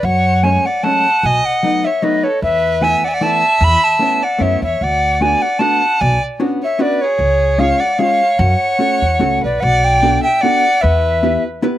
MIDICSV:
0, 0, Header, 1, 5, 480
1, 0, Start_track
1, 0, Key_signature, 3, "minor"
1, 0, Tempo, 397614
1, 43, Time_signature, 3, 2, 24, 8
1, 9162, Tempo, 403226
1, 14150, End_track
2, 0, Start_track
2, 0, Title_t, "Recorder"
2, 0, Program_c, 0, 74
2, 53, Note_on_c, 0, 78, 89
2, 526, Note_on_c, 0, 80, 80
2, 545, Note_off_c, 0, 78, 0
2, 792, Note_on_c, 0, 78, 76
2, 810, Note_off_c, 0, 80, 0
2, 1006, Note_on_c, 0, 81, 97
2, 1024, Note_off_c, 0, 78, 0
2, 1509, Note_on_c, 0, 80, 94
2, 1527, Note_off_c, 0, 81, 0
2, 1755, Note_on_c, 0, 78, 90
2, 1773, Note_off_c, 0, 80, 0
2, 2228, Note_on_c, 0, 76, 89
2, 2246, Note_off_c, 0, 78, 0
2, 2446, Note_on_c, 0, 75, 89
2, 2464, Note_off_c, 0, 76, 0
2, 2699, Note_on_c, 0, 73, 79
2, 2718, Note_off_c, 0, 75, 0
2, 2922, Note_off_c, 0, 73, 0
2, 2934, Note_on_c, 0, 76, 113
2, 3409, Note_on_c, 0, 80, 94
2, 3427, Note_off_c, 0, 76, 0
2, 3674, Note_on_c, 0, 78, 84
2, 3692, Note_off_c, 0, 80, 0
2, 3723, Note_on_c, 0, 80, 76
2, 3741, Note_off_c, 0, 78, 0
2, 3792, Note_on_c, 0, 78, 77
2, 3810, Note_off_c, 0, 80, 0
2, 3895, Note_on_c, 0, 81, 103
2, 3913, Note_off_c, 0, 78, 0
2, 4395, Note_on_c, 0, 83, 117
2, 4413, Note_off_c, 0, 81, 0
2, 4633, Note_on_c, 0, 81, 96
2, 4651, Note_off_c, 0, 83, 0
2, 5120, Note_on_c, 0, 78, 77
2, 5138, Note_off_c, 0, 81, 0
2, 5333, Note_on_c, 0, 76, 88
2, 5351, Note_off_c, 0, 78, 0
2, 5589, Note_off_c, 0, 76, 0
2, 5596, Note_on_c, 0, 76, 77
2, 5824, Note_on_c, 0, 78, 97
2, 5842, Note_off_c, 0, 76, 0
2, 6299, Note_on_c, 0, 80, 89
2, 6318, Note_off_c, 0, 78, 0
2, 6543, Note_on_c, 0, 78, 83
2, 6561, Note_off_c, 0, 80, 0
2, 6748, Note_on_c, 0, 81, 91
2, 6766, Note_off_c, 0, 78, 0
2, 7246, Note_on_c, 0, 80, 85
2, 7264, Note_off_c, 0, 81, 0
2, 7508, Note_off_c, 0, 80, 0
2, 8018, Note_on_c, 0, 76, 81
2, 8230, Note_on_c, 0, 74, 92
2, 8248, Note_off_c, 0, 76, 0
2, 8466, Note_on_c, 0, 73, 84
2, 8484, Note_off_c, 0, 74, 0
2, 9165, Note_on_c, 0, 77, 102
2, 9183, Note_off_c, 0, 73, 0
2, 9415, Note_on_c, 0, 78, 95
2, 9433, Note_off_c, 0, 77, 0
2, 9632, Note_on_c, 0, 77, 100
2, 9650, Note_off_c, 0, 78, 0
2, 10113, Note_on_c, 0, 78, 96
2, 10131, Note_off_c, 0, 77, 0
2, 11349, Note_off_c, 0, 78, 0
2, 11375, Note_on_c, 0, 74, 82
2, 11560, Note_on_c, 0, 78, 123
2, 11578, Note_off_c, 0, 74, 0
2, 11845, Note_on_c, 0, 79, 116
2, 11863, Note_off_c, 0, 78, 0
2, 12308, Note_off_c, 0, 79, 0
2, 12315, Note_on_c, 0, 79, 92
2, 12538, Note_on_c, 0, 78, 113
2, 12556, Note_off_c, 0, 79, 0
2, 12998, Note_on_c, 0, 76, 92
2, 13016, Note_off_c, 0, 78, 0
2, 13736, Note_off_c, 0, 76, 0
2, 14150, End_track
3, 0, Start_track
3, 0, Title_t, "Violin"
3, 0, Program_c, 1, 40
3, 54, Note_on_c, 1, 73, 80
3, 535, Note_off_c, 1, 73, 0
3, 535, Note_on_c, 1, 73, 67
3, 802, Note_on_c, 1, 74, 59
3, 820, Note_off_c, 1, 73, 0
3, 1013, Note_on_c, 1, 78, 74
3, 1031, Note_off_c, 1, 74, 0
3, 1516, Note_on_c, 1, 75, 90
3, 1534, Note_off_c, 1, 78, 0
3, 1776, Note_off_c, 1, 75, 0
3, 1776, Note_on_c, 1, 75, 78
3, 2253, Note_on_c, 1, 73, 64
3, 2271, Note_off_c, 1, 75, 0
3, 2460, Note_on_c, 1, 71, 66
3, 2478, Note_off_c, 1, 73, 0
3, 2718, Note_on_c, 1, 69, 69
3, 2736, Note_off_c, 1, 71, 0
3, 2929, Note_off_c, 1, 69, 0
3, 2936, Note_on_c, 1, 71, 87
3, 3427, Note_on_c, 1, 76, 86
3, 3446, Note_off_c, 1, 71, 0
3, 3676, Note_on_c, 1, 74, 66
3, 3694, Note_off_c, 1, 76, 0
3, 3707, Note_on_c, 1, 76, 53
3, 3725, Note_off_c, 1, 74, 0
3, 3769, Note_on_c, 1, 74, 82
3, 3787, Note_off_c, 1, 76, 0
3, 3901, Note_on_c, 1, 76, 90
3, 3919, Note_off_c, 1, 74, 0
3, 4373, Note_off_c, 1, 76, 0
3, 4373, Note_on_c, 1, 76, 110
3, 4640, Note_off_c, 1, 76, 0
3, 4640, Note_on_c, 1, 76, 84
3, 5103, Note_on_c, 1, 74, 64
3, 5121, Note_off_c, 1, 76, 0
3, 5340, Note_on_c, 1, 73, 64
3, 5358, Note_off_c, 1, 74, 0
3, 5592, Note_off_c, 1, 73, 0
3, 5612, Note_on_c, 1, 73, 68
3, 5836, Note_on_c, 1, 74, 78
3, 5855, Note_off_c, 1, 73, 0
3, 6319, Note_off_c, 1, 74, 0
3, 6319, Note_on_c, 1, 74, 66
3, 6565, Note_off_c, 1, 74, 0
3, 6565, Note_on_c, 1, 74, 69
3, 6774, Note_on_c, 1, 78, 71
3, 6793, Note_off_c, 1, 74, 0
3, 7259, Note_on_c, 1, 74, 87
3, 7277, Note_off_c, 1, 78, 0
3, 7514, Note_off_c, 1, 74, 0
3, 7999, Note_on_c, 1, 73, 63
3, 8220, Note_on_c, 1, 71, 72
3, 8238, Note_off_c, 1, 73, 0
3, 8490, Note_on_c, 1, 68, 74
3, 8508, Note_off_c, 1, 71, 0
3, 9183, Note_on_c, 1, 73, 82
3, 9201, Note_off_c, 1, 68, 0
3, 9412, Note_on_c, 1, 74, 73
3, 9430, Note_off_c, 1, 73, 0
3, 9637, Note_on_c, 1, 73, 81
3, 9654, Note_off_c, 1, 74, 0
3, 10125, Note_off_c, 1, 73, 0
3, 10125, Note_on_c, 1, 73, 92
3, 11350, Note_off_c, 1, 73, 0
3, 11358, Note_on_c, 1, 71, 74
3, 11590, Note_on_c, 1, 74, 99
3, 11608, Note_off_c, 1, 71, 0
3, 11835, Note_off_c, 1, 74, 0
3, 11835, Note_on_c, 1, 74, 85
3, 12299, Note_off_c, 1, 74, 0
3, 12306, Note_on_c, 1, 76, 73
3, 12522, Note_on_c, 1, 74, 86
3, 12540, Note_off_c, 1, 76, 0
3, 13013, Note_on_c, 1, 71, 85
3, 13031, Note_off_c, 1, 74, 0
3, 13744, Note_off_c, 1, 71, 0
3, 14150, End_track
4, 0, Start_track
4, 0, Title_t, "Hollow-body jazz guitar"
4, 0, Program_c, 2, 26
4, 519, Note_on_c, 2, 54, 53
4, 524, Note_on_c, 2, 56, 46
4, 535, Note_on_c, 2, 57, 46
4, 542, Note_on_c, 2, 61, 48
4, 785, Note_off_c, 2, 56, 0
4, 787, Note_off_c, 2, 54, 0
4, 794, Note_off_c, 2, 57, 0
4, 795, Note_off_c, 2, 61, 0
4, 1005, Note_on_c, 2, 54, 57
4, 1010, Note_on_c, 2, 56, 51
4, 1017, Note_on_c, 2, 57, 53
4, 1029, Note_on_c, 2, 61, 57
4, 1271, Note_off_c, 2, 54, 0
4, 1275, Note_off_c, 2, 56, 0
4, 1276, Note_off_c, 2, 57, 0
4, 1278, Note_off_c, 2, 61, 0
4, 1966, Note_on_c, 2, 54, 54
4, 1976, Note_on_c, 2, 57, 43
4, 1983, Note_on_c, 2, 63, 58
4, 1986, Note_on_c, 2, 59, 44
4, 2231, Note_off_c, 2, 54, 0
4, 2231, Note_off_c, 2, 57, 0
4, 2232, Note_off_c, 2, 59, 0
4, 2236, Note_off_c, 2, 63, 0
4, 2441, Note_on_c, 2, 54, 67
4, 2449, Note_on_c, 2, 57, 59
4, 2453, Note_on_c, 2, 63, 67
4, 2460, Note_on_c, 2, 59, 49
4, 2704, Note_off_c, 2, 54, 0
4, 2704, Note_off_c, 2, 57, 0
4, 2708, Note_off_c, 2, 59, 0
4, 2709, Note_off_c, 2, 63, 0
4, 3395, Note_on_c, 2, 52, 56
4, 3401, Note_on_c, 2, 57, 42
4, 3408, Note_on_c, 2, 64, 57
4, 3412, Note_on_c, 2, 59, 46
4, 3653, Note_off_c, 2, 52, 0
4, 3653, Note_off_c, 2, 57, 0
4, 3654, Note_off_c, 2, 59, 0
4, 3657, Note_off_c, 2, 64, 0
4, 3874, Note_on_c, 2, 52, 73
4, 3875, Note_on_c, 2, 57, 59
4, 3885, Note_on_c, 2, 64, 69
4, 3895, Note_on_c, 2, 59, 58
4, 4130, Note_off_c, 2, 52, 0
4, 4134, Note_off_c, 2, 57, 0
4, 4135, Note_off_c, 2, 64, 0
4, 4136, Note_off_c, 2, 59, 0
4, 4818, Note_on_c, 2, 57, 46
4, 4826, Note_on_c, 2, 61, 50
4, 4832, Note_on_c, 2, 59, 52
4, 4842, Note_on_c, 2, 64, 52
4, 5084, Note_off_c, 2, 57, 0
4, 5090, Note_off_c, 2, 59, 0
4, 5090, Note_off_c, 2, 61, 0
4, 5091, Note_off_c, 2, 64, 0
4, 5293, Note_on_c, 2, 57, 58
4, 5301, Note_on_c, 2, 61, 62
4, 5305, Note_on_c, 2, 59, 54
4, 5312, Note_on_c, 2, 64, 66
4, 5569, Note_off_c, 2, 57, 0
4, 5573, Note_off_c, 2, 59, 0
4, 5574, Note_off_c, 2, 61, 0
4, 5579, Note_off_c, 2, 64, 0
4, 6286, Note_on_c, 2, 57, 54
4, 6296, Note_on_c, 2, 62, 48
4, 6300, Note_on_c, 2, 59, 43
4, 6302, Note_on_c, 2, 66, 60
4, 6548, Note_off_c, 2, 57, 0
4, 6553, Note_off_c, 2, 59, 0
4, 6554, Note_off_c, 2, 62, 0
4, 6556, Note_off_c, 2, 66, 0
4, 6750, Note_on_c, 2, 57, 63
4, 6757, Note_on_c, 2, 59, 51
4, 6761, Note_on_c, 2, 62, 67
4, 6768, Note_on_c, 2, 66, 62
4, 7022, Note_off_c, 2, 57, 0
4, 7022, Note_off_c, 2, 59, 0
4, 7027, Note_off_c, 2, 62, 0
4, 7028, Note_off_c, 2, 66, 0
4, 7722, Note_on_c, 2, 61, 60
4, 7726, Note_on_c, 2, 59, 61
4, 7729, Note_on_c, 2, 62, 58
4, 7733, Note_on_c, 2, 66, 62
4, 7982, Note_off_c, 2, 59, 0
4, 7984, Note_off_c, 2, 61, 0
4, 7987, Note_off_c, 2, 66, 0
4, 7988, Note_off_c, 2, 62, 0
4, 8193, Note_on_c, 2, 59, 63
4, 8199, Note_on_c, 2, 61, 54
4, 8203, Note_on_c, 2, 62, 45
4, 8208, Note_on_c, 2, 66, 71
4, 8456, Note_off_c, 2, 59, 0
4, 8459, Note_off_c, 2, 62, 0
4, 8460, Note_off_c, 2, 61, 0
4, 8463, Note_off_c, 2, 66, 0
4, 9155, Note_on_c, 2, 56, 60
4, 9164, Note_on_c, 2, 61, 56
4, 9172, Note_on_c, 2, 65, 48
4, 9175, Note_on_c, 2, 68, 59
4, 9416, Note_off_c, 2, 56, 0
4, 9421, Note_off_c, 2, 61, 0
4, 9423, Note_off_c, 2, 65, 0
4, 9426, Note_off_c, 2, 68, 0
4, 9636, Note_on_c, 2, 56, 67
4, 9644, Note_on_c, 2, 61, 45
4, 9645, Note_on_c, 2, 65, 55
4, 9650, Note_on_c, 2, 68, 63
4, 9899, Note_off_c, 2, 56, 0
4, 9899, Note_off_c, 2, 61, 0
4, 9903, Note_off_c, 2, 68, 0
4, 9904, Note_off_c, 2, 65, 0
4, 10588, Note_on_c, 2, 57, 45
4, 10598, Note_on_c, 2, 61, 47
4, 10598, Note_on_c, 2, 66, 43
4, 10608, Note_on_c, 2, 69, 44
4, 10857, Note_off_c, 2, 57, 0
4, 10857, Note_off_c, 2, 66, 0
4, 10858, Note_off_c, 2, 69, 0
4, 10859, Note_off_c, 2, 61, 0
4, 11071, Note_on_c, 2, 57, 66
4, 11078, Note_on_c, 2, 61, 64
4, 11087, Note_on_c, 2, 66, 67
4, 11089, Note_on_c, 2, 69, 76
4, 11347, Note_off_c, 2, 57, 0
4, 11347, Note_off_c, 2, 61, 0
4, 11348, Note_off_c, 2, 66, 0
4, 11354, Note_off_c, 2, 69, 0
4, 12064, Note_on_c, 2, 59, 58
4, 12073, Note_on_c, 2, 62, 53
4, 12077, Note_on_c, 2, 69, 67
4, 12082, Note_on_c, 2, 66, 46
4, 12324, Note_off_c, 2, 59, 0
4, 12324, Note_off_c, 2, 62, 0
4, 12325, Note_off_c, 2, 66, 0
4, 12328, Note_off_c, 2, 69, 0
4, 12545, Note_on_c, 2, 59, 62
4, 12555, Note_on_c, 2, 66, 63
4, 12556, Note_on_c, 2, 62, 53
4, 12564, Note_on_c, 2, 69, 64
4, 12802, Note_off_c, 2, 59, 0
4, 12803, Note_off_c, 2, 62, 0
4, 12806, Note_off_c, 2, 66, 0
4, 12808, Note_off_c, 2, 69, 0
4, 13493, Note_on_c, 2, 59, 53
4, 13504, Note_on_c, 2, 64, 55
4, 13505, Note_on_c, 2, 67, 58
4, 13512, Note_on_c, 2, 71, 59
4, 13748, Note_off_c, 2, 59, 0
4, 13749, Note_off_c, 2, 64, 0
4, 13752, Note_off_c, 2, 67, 0
4, 13756, Note_off_c, 2, 71, 0
4, 13965, Note_on_c, 2, 59, 77
4, 13970, Note_on_c, 2, 64, 78
4, 13972, Note_on_c, 2, 67, 58
4, 13981, Note_on_c, 2, 71, 90
4, 14150, Note_off_c, 2, 59, 0
4, 14150, Note_off_c, 2, 64, 0
4, 14150, Note_off_c, 2, 67, 0
4, 14150, Note_off_c, 2, 71, 0
4, 14150, End_track
5, 0, Start_track
5, 0, Title_t, "Upright bass"
5, 0, Program_c, 3, 32
5, 36, Note_on_c, 3, 42, 95
5, 670, Note_off_c, 3, 42, 0
5, 1489, Note_on_c, 3, 35, 87
5, 1659, Note_off_c, 3, 35, 0
5, 2925, Note_on_c, 3, 40, 83
5, 3540, Note_off_c, 3, 40, 0
5, 4354, Note_on_c, 3, 40, 105
5, 4520, Note_off_c, 3, 40, 0
5, 5313, Note_on_c, 3, 42, 71
5, 5553, Note_off_c, 3, 42, 0
5, 5576, Note_on_c, 3, 40, 76
5, 5781, Note_off_c, 3, 40, 0
5, 5807, Note_on_c, 3, 38, 78
5, 6436, Note_off_c, 3, 38, 0
5, 7256, Note_on_c, 3, 35, 104
5, 7423, Note_off_c, 3, 35, 0
5, 8677, Note_on_c, 3, 37, 88
5, 9305, Note_off_c, 3, 37, 0
5, 10115, Note_on_c, 3, 42, 109
5, 10284, Note_off_c, 3, 42, 0
5, 10860, Note_on_c, 3, 40, 78
5, 11065, Note_off_c, 3, 40, 0
5, 11093, Note_on_c, 3, 37, 74
5, 11329, Note_off_c, 3, 37, 0
5, 11364, Note_on_c, 3, 35, 65
5, 11562, Note_off_c, 3, 35, 0
5, 11583, Note_on_c, 3, 35, 98
5, 12208, Note_off_c, 3, 35, 0
5, 13026, Note_on_c, 3, 40, 97
5, 13638, Note_off_c, 3, 40, 0
5, 14150, End_track
0, 0, End_of_file